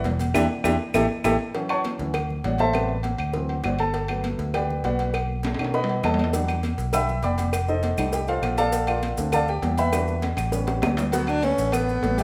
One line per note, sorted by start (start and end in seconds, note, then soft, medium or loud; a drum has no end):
0.04 0.32 E1 medium
0.04 cowbell medium
0.04 high conga medium
0.04 low timbale medium
0.04 low agogo medium
0.04 maracas soft
0.19 cowbell medium
0.19 high conga medium
0.19 low agogo medium
0.19 maracas medium
0.34 0.46 E2 loud
0.34 0.44 D4 loud
0.34 0.44 E4 loud
0.34 0.44 G4 loud
0.34 cowbell loud
0.34 high conga loud
0.34 high timbale loud
0.34 claves loud
0.34 maracas loud
0.64 0.76 E2 loud
0.64 0.74 D4 loud
0.64 0.74 E4 loud
0.64 0.74 G4 loud
0.64 cowbell loud
0.64 high conga loud
0.64 high timbale loud
0.64 claves loud
0.64 maracas loud
0.94 1.06 A1 medium
0.94 1.04 E4 loud
0.94 1.04 G4 medium
0.94 1.04 A4 loud
0.94 cowbell loud
0.94 high conga loud
0.94 high timbale loud
0.94 claves loud
0.94 maracas loud
1.24 1.36 A1 medium
1.24 1.34 E4 loud
1.24 1.34 G4 loud
1.24 1.34 A4 loud
1.24 cowbell loud
1.24 high conga loud
1.24 high timbale loud
1.24 claves loud
1.24 maracas loud
1.55 1.99 E3 medium
1.55 1.99 F#3 medium
1.55 2.00 C#4 medium
1.55 cowbell loud
1.55 low agogo medium
1.69 1.79 C#5 medium
1.69 1.79 F#5 medium
1.69 1.79 A5 medium
1.69 1.79 C#6 medium
1.69 high conga soft
1.69 low agogo loud
1.69 claves medium
1.84 cowbell medium
1.84 high conga medium
1.84 low agogo medium
1.99 2.41 D2 medium
1.99 2.13 E3 soft
1.99 2.14 F#3 soft
1.99 2.14 C#4 medium
1.99 cowbell medium
2.14 cowbell loud
2.14 high conga soft
2.14 low conga medium
2.14 low agogo loud
2.14 claves medium
2.30 high conga soft
2.30 low conga medium
2.44 3.13 A1 medium
2.44 2.60 F#4 medium
2.44 2.60 C#5 medium
2.44 2.60 D5 medium
2.44 2.59 F#5 medium
2.44 cowbell medium
2.44 high conga medium
2.44 low timbale medium
2.44 low agogo medium
2.58 2.88 A4 medium
2.58 2.88 C5 medium
2.58 2.88 E5 medium
2.58 2.88 A5 loud
2.58 cowbell medium
2.58 high conga medium
2.58 low agogo medium
2.73 2.94 C3 medium
2.73 2.94 G3 medium
2.73 2.95 B3 medium
2.73 cowbell medium
2.73 low agogo loud
2.73 claves medium
2.90 high conga soft
3.03 cowbell medium
3.03 high conga medium
3.03 low agogo medium
3.18 3.61 D2 medium
3.18 low agogo loud
3.18 claves medium
3.34 3.54 E3 medium
3.34 3.54 F#3 medium
3.34 3.55 C4 medium
3.34 cowbell loud
3.34 high conga soft
3.49 high conga soft
3.49 low agogo medium
3.64 4.33 G1 medium
3.64 3.79 F#4 medium
3.64 3.79 C5 medium
3.64 3.79 D5 medium
3.64 3.79 F#5 medium
3.64 cowbell medium
3.64 high conga medium
3.64 low timbale medium
3.64 low agogo loud
3.64 claves medium
3.79 4.07 A4 medium
3.79 4.07 A5 medium
3.79 high conga medium
3.79 low agogo medium
3.94 cowbell loud
3.94 low agogo medium
4.08 5.10 F#3 medium
4.08 5.10 A3 soft
4.08 5.10 B3 medium
4.08 high conga soft
4.08 low agogo loud
4.08 claves medium
4.24 cowbell medium
4.24 high conga medium
4.24 low agogo medium
4.38 4.80 D2 loud
4.38 cowbell medium
4.54 4.82 G4 medium
4.54 4.82 B4 medium
4.54 4.82 D5 medium
4.54 4.82 G5 medium
4.54 cowbell loud
4.54 high conga soft
4.54 low conga medium
4.54 low agogo loud
4.54 claves medium
4.70 high conga soft
4.70 low conga medium
4.83 5.53 B1 medium
4.83 5.12 F#4 medium
4.83 5.12 B4 medium
4.83 5.12 D5 medium
4.83 5.12 F#5 medium
4.83 cowbell medium
4.83 high conga medium
4.83 low agogo medium
4.99 cowbell medium
4.99 high conga medium
4.99 low agogo medium
5.14 cowbell loud
5.14 high conga soft
5.14 low agogo loud
5.14 claves medium
5.30 high conga soft
5.43 cowbell medium
5.43 high conga loud
5.43 high timbale medium
5.43 low agogo medium
5.54 6.00 B2 medium
5.54 high timbale medium
5.59 5.79 D#3 medium
5.59 5.79 A3 medium
5.59 5.79 C#4 medium
5.59 low agogo loud
5.59 claves medium
5.64 high timbale medium
5.74 6.02 B4 medium
5.74 6.02 D#5 medium
5.74 6.02 F#5 medium
5.74 6.02 B5 loud
5.74 cowbell loud
5.74 high conga soft
5.84 low timbale medium
5.89 high conga soft
5.89 low agogo medium
6.03 6.73 E2 medium
6.03 6.32 A4 medium
6.03 6.32 D#5 medium
6.03 6.32 F#5 medium
6.03 6.32 A5 medium
6.03 cowbell medium
6.03 high conga medium
6.03 low timbale loud
6.03 low agogo loud
6.03 claves medium
6.14 low timbale loud
6.19 high conga medium
6.19 low agogo medium
6.24 low timbale medium
6.33 6.53 F#3 medium
6.33 6.53 G3 medium
6.33 6.54 D4 medium
6.33 cowbell loud
6.33 high conga soft
6.33 low agogo medium
6.33 maracas medium
6.48 high conga soft
6.48 low agogo loud
6.48 claves medium
6.48 maracas soft
6.63 cowbell medium
6.63 high conga loud
6.63 low agogo medium
6.63 maracas soft
6.78 7.20 B1 medium
6.78 cowbell medium
6.78 high conga soft
6.78 maracas medium
6.93 7.07 F#3 soft
6.93 7.07 G3 soft
6.93 7.07 D4 medium
6.93 7.22 E5 medium
6.93 7.22 G5 medium
6.93 7.22 B5 medium
6.93 7.21 E6 loud
6.93 cowbell loud
6.93 high conga soft
6.93 low conga medium
6.93 low agogo loud
6.93 claves medium
6.93 maracas loud
7.09 high conga soft
7.09 low conga medium
7.09 maracas soft
7.23 7.92 F1 medium
7.23 7.51 D5 medium
7.23 7.51 G5 medium
7.23 7.51 B5 medium
7.23 7.51 D6 medium
7.23 cowbell medium
7.23 high conga medium
7.23 low agogo medium
7.23 maracas soft
7.38 cowbell medium
7.38 high conga medium
7.38 low agogo medium
7.38 maracas medium
7.53 cowbell loud
7.53 low agogo loud
7.53 claves medium
7.53 maracas medium
7.68 7.98 D#4 medium
7.68 8.10 A4 medium
7.68 8.10 C5 medium
7.68 8.10 D#5 medium
7.68 high conga soft
7.68 maracas soft
7.83 cowbell medium
7.83 high conga loud
7.83 low agogo medium
7.83 maracas soft
7.98 8.40 C2 medium
7.98 8.41 G3 medium
7.98 8.41 A3 medium
7.98 8.41 D#4 medium
7.98 low agogo loud
7.98 claves medium
7.98 maracas medium
8.13 8.28 G4 medium
8.13 8.28 G5 medium
8.13 cowbell loud
8.13 high conga soft
8.13 maracas loud
8.27 8.56 F4 medium
8.27 8.56 A4 medium
8.27 8.56 C5 medium
8.27 8.56 F5 medium
8.27 high conga soft
8.27 low agogo medium
8.27 maracas soft
8.43 9.12 A#1 medium
8.43 cowbell medium
8.43 high conga medium
8.43 low agogo loud
8.43 claves medium
8.43 maracas soft
8.58 9.00 A4 medium
8.58 8.87 D5 medium
8.58 8.86 F5 medium
8.58 9.00 A5 loud
8.58 high conga medium
8.58 low agogo medium
8.58 maracas medium
8.72 cowbell loud
8.72 high conga soft
8.72 low agogo medium
8.72 maracas loud
8.87 9.30 F4 medium
8.87 9.30 A#4 medium
8.87 9.30 D5 medium
8.87 9.30 F5 medium
8.87 high conga soft
8.87 low agogo loud
8.87 claves medium
8.87 maracas soft
9.02 cowbell medium
9.02 high conga loud
9.02 low agogo medium
9.02 maracas soft
9.18 9.60 D2 loud
9.18 9.38 A3 medium
9.18 9.38 C4 medium
9.18 9.38 D4 medium
9.18 cowbell medium
9.18 high conga soft
9.18 maracas medium
9.32 9.48 A4 medium
9.32 9.48 D5 medium
9.32 9.48 F5 medium
9.32 9.48 A5 loud
9.32 cowbell loud
9.32 high conga soft
9.32 low conga medium
9.32 low agogo loud
9.32 claves medium
9.32 maracas loud
9.48 9.77 G4 medium
9.48 9.76 G5 medium
9.48 high conga soft
9.48 maracas soft
9.62 10.32 E2 loud
9.62 cowbell medium
9.62 high conga medium
9.62 low timbale medium
9.62 low agogo medium
9.62 maracas soft
9.78 10.20 B4 medium
9.78 10.20 E5 medium
9.78 10.20 G5 medium
9.78 10.20 B5 loud
9.78 cowbell medium
9.78 high conga medium
9.78 low agogo medium
9.78 maracas medium
9.93 10.13 G3 medium
9.93 10.13 D4 medium
9.93 10.13 F#4 medium
9.93 cowbell loud
9.93 low agogo loud
9.93 claves medium
9.93 maracas medium
10.08 high conga soft
10.08 maracas soft
10.22 cowbell medium
10.22 high conga loud
10.22 high timbale medium
10.22 low agogo medium
10.22 maracas soft
10.37 10.79 A1 medium
10.37 high conga soft
10.37 high timbale medium
10.37 low agogo loud
10.37 claves medium
10.37 maracas medium
10.52 11.09 G3 medium
10.52 11.10 B3 medium
10.52 11.10 C#4 medium
10.52 cowbell loud
10.52 high conga soft
10.52 maracas loud
10.67 high bongo medium
10.67 high conga soft
10.67 low agogo medium
10.67 maracas soft
10.82 11.52 D2 medium
10.82 cowbell medium
10.82 high bongo loud
10.82 high conga medium
10.82 low timbale medium
10.82 low agogo loud
10.82 claves medium
10.82 maracas soft
10.97 low bongo medium
10.97 high conga medium
10.97 low timbale loud
10.97 low agogo medium
10.97 maracas medium
11.12 11.37 F#3 medium
11.12 11.30 B3 medium
11.12 11.37 F#4 medium
11.12 11.37 F#5 medium
11.12 cowbell loud
11.12 low agogo medium
11.12 maracas medium
11.27 11.45 D4 loud
11.27 high conga soft
11.27 low agogo loud
11.27 claves medium
11.27 maracas soft
11.42 11.67 A3 medium
11.42 11.75 C#4 medium
11.42 11.68 A4 medium
11.42 11.68 B4 medium
11.42 cowbell medium
11.42 high conga loud
11.42 low agogo medium
11.42 maracas soft
11.58 12.00 A1 medium
11.58 cowbell medium
11.58 high conga soft
11.58 maracas medium
11.72 11.97 A3 medium
11.72 12.18 B3 medium
11.72 11.97 A4 medium
11.72 11.97 B4 medium
11.72 cowbell loud
11.72 high conga soft
11.72 low conga medium
11.72 low agogo loud
11.72 claves medium
11.72 maracas loud
11.89 maracas soft
12.02 12.23 A1 medium
12.02 12.15 A3 medium
12.02 12.15 A4 medium
12.02 12.15 B4 medium
12.02 cowbell medium
12.02 high conga medium
12.02 low timbale medium
12.02 low agogo medium
12.02 maracas soft
12.17 12.23 G3 medium
12.17 12.23 A3 medium
12.17 12.23 G4 medium
12.17 12.23 G5 medium
12.17 cowbell medium
12.17 high conga medium
12.17 low agogo medium
12.17 maracas medium